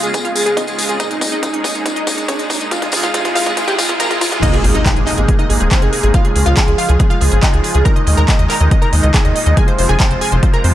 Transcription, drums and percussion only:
0.04 closed hi-hat soft
0.04 tambourine soft
0.14 kick loud
0.14 closed hi-hat medium
0.14 tambourine medium
0.25 closed hi-hat soft
0.35 open hi-hat loud
0.35 tambourine medium
0.46 closed hi-hat soft
0.57 kick loud
0.57 closed hi-hat medium
0.57 tambourine medium
0.67 closed hi-hat soft
0.67 tambourine soft
0.79 open hi-hat loud
0.79 tambourine medium
0.89 closed hi-hat soft
0.89 tambourine soft
1.00 kick loud
1.00 closed hi-hat medium
1.00 tambourine medium
1.11 closed hi-hat soft
1.11 tambourine soft
1.21 kick loud
1.21 open hi-hat loud
1.21 tambourine loud
1.32 closed hi-hat soft
1.32 tambourine soft
1.43 kick loud
1.43 closed hi-hat medium
1.43 tambourine soft
1.54 closed hi-hat soft
1.64 kick loud
1.64 open hi-hat loud
1.64 tambourine medium
1.75 closed hi-hat soft
1.75 tambourine soft
1.86 kick loud
1.86 closed hi-hat medium
1.86 tambourine medium
1.96 closed hi-hat soft
2.07 kick loud
2.07 open hi-hat loud
2.07 tambourine medium
2.18 closed hi-hat soft
2.18 tambourine soft
2.29 kick loud
2.29 closed hi-hat medium
2.29 tambourine soft
2.39 closed hi-hat soft
2.39 tambourine soft
2.50 kick loud
2.50 open hi-hat medium
2.50 tambourine medium
2.61 closed hi-hat soft
2.61 tambourine soft
2.71 kick loud
2.71 closed hi-hat medium
2.71 tambourine medium
2.82 kick medium
2.82 closed hi-hat soft
2.82 tambourine soft
2.92 kick loud
2.92 open hi-hat loud
2.92 tambourine medium
3.04 kick loud
3.04 closed hi-hat soft
3.04 tambourine soft
3.14 kick loud
3.14 closed hi-hat medium
3.14 tambourine medium
3.25 kick medium
3.25 closed hi-hat soft
3.25 tambourine soft
3.36 kick loud
3.36 open hi-hat loud
3.36 tambourine medium
3.46 kick medium
3.46 closed hi-hat soft
3.46 tambourine soft
3.57 kick loud
3.57 closed hi-hat loud
3.57 tambourine medium
3.68 kick medium
3.68 closed hi-hat soft
3.68 tambourine soft
3.79 kick loud
3.79 open hi-hat loud
3.79 tambourine medium
3.89 kick medium
3.89 closed hi-hat soft
3.89 tambourine soft
4.00 kick loud
4.00 closed hi-hat loud
4.00 tambourine medium
4.11 kick medium
4.11 closed hi-hat soft
4.11 tambourine soft
4.21 kick loud
4.21 open hi-hat loud
4.21 tambourine medium
4.32 kick medium
4.32 closed hi-hat soft
4.32 tambourine soft
4.43 kick loud
4.43 closed hi-hat medium
4.43 crash loud
4.54 closed hi-hat soft
4.64 open hi-hat loud
4.75 closed hi-hat soft
4.86 kick loud
4.86 clap loud
4.86 closed hi-hat loud
4.96 closed hi-hat soft
5.07 clap soft
5.07 open hi-hat loud
5.18 closed hi-hat soft
5.29 kick loud
5.29 closed hi-hat loud
5.39 closed hi-hat soft
5.50 open hi-hat loud
5.61 closed hi-hat soft
5.71 kick loud
5.71 clap loud
5.71 closed hi-hat medium
5.82 closed hi-hat soft
5.93 open hi-hat loud
6.03 closed hi-hat soft
6.14 kick loud
6.14 closed hi-hat medium
6.25 closed hi-hat soft
6.36 open hi-hat loud
6.46 closed hi-hat soft
6.57 kick loud
6.57 clap loud
6.57 closed hi-hat loud
6.68 closed hi-hat soft
6.78 open hi-hat loud
6.89 closed hi-hat soft
7.00 kick loud
7.00 closed hi-hat medium
7.11 closed hi-hat soft
7.21 open hi-hat loud
7.32 closed hi-hat soft
7.43 kick loud
7.43 clap loud
7.43 closed hi-hat medium
7.54 closed hi-hat soft
7.64 open hi-hat loud
7.75 closed hi-hat soft
7.86 kick loud
7.86 closed hi-hat medium
7.96 closed hi-hat soft
8.07 open hi-hat loud
8.18 closed hi-hat soft
8.28 kick loud
8.28 clap loud
8.28 closed hi-hat medium
8.39 closed hi-hat soft
8.50 clap soft
8.50 open hi-hat loud
8.61 closed hi-hat soft
8.71 kick loud
8.71 closed hi-hat medium
8.82 closed hi-hat soft
8.93 open hi-hat loud
9.03 closed hi-hat soft
9.14 kick loud
9.14 clap loud
9.14 closed hi-hat medium
9.25 closed hi-hat soft
9.36 open hi-hat loud
9.46 closed hi-hat soft
9.57 kick loud
9.57 closed hi-hat medium
9.68 closed hi-hat soft
9.79 open hi-hat loud
9.89 closed hi-hat soft
10.00 kick loud
10.00 clap loud
10.00 closed hi-hat medium
10.11 closed hi-hat soft
10.21 open hi-hat loud
10.32 closed hi-hat soft
10.43 kick loud
10.43 closed hi-hat medium
10.54 closed hi-hat soft
10.64 open hi-hat loud

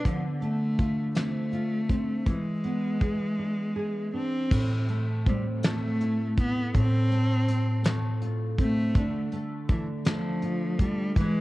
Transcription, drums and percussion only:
0.05 kick medium
0.05 closed hi-hat medium
0.42 closed hi-hat soft
0.79 kick medium
0.79 closed hi-hat medium
1.15 snare medium
1.15 closed hi-hat medium
1.53 closed hi-hat soft
1.89 kick medium
1.89 closed hi-hat medium
2.26 kick medium
2.26 closed hi-hat medium
2.64 closed hi-hat soft
3.01 kick medium
3.01 closed hi-hat medium
4.51 kick loud
4.51 crash medium
4.89 closed hi-hat soft
5.26 kick medium
5.26 closed hi-hat medium
5.63 snare loud
5.63 closed hi-hat medium
6.01 closed hi-hat soft
6.37 kick medium
6.37 closed hi-hat medium
6.75 kick loud
6.75 closed hi-hat medium
7.12 closed hi-hat soft
7.48 closed hi-hat medium
7.84 snare loud
7.84 closed hi-hat loud
8.22 closed hi-hat medium
8.59 kick medium
8.59 closed hi-hat medium
8.95 kick loud
8.95 closed hi-hat medium
9.32 closed hi-hat soft
9.69 kick medium
9.69 closed hi-hat medium
10.05 snare loud
10.05 closed hi-hat medium
10.42 closed hi-hat medium
10.79 kick medium
10.79 closed hi-hat medium
11.16 kick loud
11.16 closed hi-hat medium

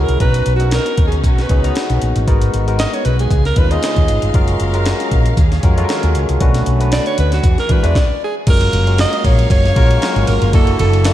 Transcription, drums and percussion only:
0.09 closed hi-hat medium
0.20 kick loud
0.20 closed hi-hat medium
0.34 closed hi-hat medium
0.46 closed hi-hat medium
0.60 closed hi-hat soft
0.71 snare loud
0.71 closed hi-hat medium
0.86 closed hi-hat medium
0.97 kick medium
0.97 closed hi-hat medium
1.12 closed hi-hat medium
1.24 kick loud
1.24 closed hi-hat medium
1.38 snare soft
1.38 closed hi-hat soft
1.49 kick medium
1.49 closed hi-hat medium
1.64 closed hi-hat medium
1.76 snare loud
1.76 closed hi-hat medium
1.90 closed hi-hat soft
2.02 closed hi-hat medium
2.16 closed hi-hat medium
2.28 kick loud
2.28 closed hi-hat medium
2.42 closed hi-hat medium
2.54 closed hi-hat medium
2.68 closed hi-hat soft
2.79 snare loud
2.79 closed hi-hat medium
2.94 closed hi-hat medium
3.05 closed hi-hat medium
3.19 closed hi-hat medium
3.31 kick loud
3.31 closed hi-hat loud
3.45 snare soft
3.45 closed hi-hat soft
3.56 kick medium
3.56 closed hi-hat medium
3.71 closed hi-hat medium
3.83 snare loud
3.83 closed hi-hat medium
3.96 kick medium
3.96 closed hi-hat soft
4.08 closed hi-hat medium
4.22 closed hi-hat medium
4.34 kick loud
4.34 closed hi-hat medium
4.48 closed hi-hat medium
4.60 closed hi-hat medium
4.74 closed hi-hat soft
4.86 snare loud
4.86 closed hi-hat medium
5.00 closed hi-hat medium
5.12 kick medium
5.12 closed hi-hat medium
5.26 closed hi-hat medium
5.37 kick loud
5.37 closed hi-hat medium
5.52 snare soft
5.52 closed hi-hat soft
5.63 kick medium
5.63 closed hi-hat medium
5.78 closed hi-hat medium
5.89 snare loud
5.89 closed hi-hat medium
6.03 closed hi-hat soft
6.15 closed hi-hat medium
6.29 closed hi-hat medium
6.41 kick loud
6.41 closed hi-hat medium
6.54 snare soft
6.54 closed hi-hat medium
6.66 closed hi-hat medium
6.81 closed hi-hat soft
6.92 snare loud
6.92 closed hi-hat loud
7.06 closed hi-hat medium
7.18 closed hi-hat medium
7.32 snare soft
7.32 closed hi-hat medium
7.44 kick loud
7.44 closed hi-hat loud
7.58 snare soft
7.58 closed hi-hat soft
7.69 kick medium
7.69 closed hi-hat medium
7.84 closed hi-hat medium
7.95 kick loud
7.95 snare medium
8.47 kick loud
8.47 crash loud
8.47 ride medium
8.61 ride medium
8.73 ride medium
8.87 ride soft
8.98 snare loud
8.98 ride medium
9.13 ride soft
9.25 kick medium
9.25 ride medium
9.39 ride medium
9.50 kick loud
9.50 ride medium
9.65 snare soft
9.65 ride soft
9.76 kick medium
9.76 ride medium
9.91 ride medium
10.02 snare loud
10.02 ride medium
10.16 ride soft
10.27 ride medium
10.42 ride soft
10.53 kick loud
10.53 ride medium
10.67 ride medium
10.79 ride medium
10.93 ride soft
11.04 snare loud
11.04 ride medium

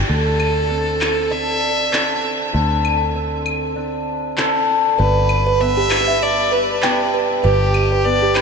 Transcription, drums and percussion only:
0.40 claves medium
1.01 clap medium
1.01 claves medium
1.93 clap medium
2.85 claves medium
3.46 claves medium
4.37 clap medium
5.29 claves medium
5.91 clap medium
5.91 claves medium
6.82 clap medium
7.74 claves medium
8.35 clap medium
8.35 claves medium

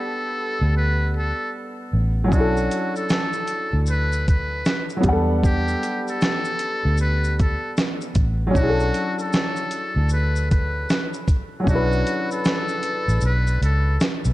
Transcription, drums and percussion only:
2.32 kick medium
2.32 shaker medium
2.57 shaker soft
2.71 closed hi-hat medium
2.71 shaker soft
2.96 shaker soft
3.09 snare loud
3.09 shaker medium
3.33 shaker soft
3.48 closed hi-hat medium
3.48 shaker soft
3.86 shaker medium
4.13 shaker medium
4.28 kick medium
4.28 closed hi-hat soft
4.28 shaker soft
4.66 snare loud
4.66 shaker medium
4.90 shaker medium
5.04 kick medium
5.04 closed hi-hat medium
5.04 shaker soft
5.44 kick loud
5.44 shaker medium
5.68 shaker soft
5.83 closed hi-hat medium
5.83 shaker soft
6.08 shaker soft
6.21 snare loud
6.21 shaker medium
6.45 shaker soft
6.59 closed hi-hat medium
6.59 shaker soft
6.98 shaker medium
7.24 shaker medium
7.40 kick medium
7.40 closed hi-hat medium
7.40 shaker soft
7.77 snare loud
7.77 shaker medium
8.01 shaker medium
8.15 kick medium
8.15 closed hi-hat medium
8.15 shaker soft
8.55 kick medium
8.55 shaker medium
8.80 shaker soft
8.94 closed hi-hat medium
8.94 shaker soft
9.19 shaker soft
9.33 snare medium
9.33 shaker medium
9.56 shaker soft
9.71 closed hi-hat medium
9.71 shaker soft
10.09 shaker medium
10.36 shaker soft
10.51 kick medium
10.51 closed hi-hat soft
10.51 shaker soft
10.90 snare loud
10.90 shaker medium
11.14 shaker medium
11.28 kick medium
11.28 closed hi-hat medium
11.28 shaker soft
11.67 kick loud
11.67 shaker medium
11.92 shaker soft
12.07 closed hi-hat medium
12.07 shaker soft
12.31 shaker soft
12.45 snare loud
12.45 shaker medium
12.68 shaker soft
12.83 closed hi-hat medium
12.83 shaker soft
13.09 shaker soft
13.21 shaker medium
13.47 shaker soft
13.63 closed hi-hat medium
13.63 shaker soft
14.01 snare loud
14.01 shaker medium
14.25 shaker medium

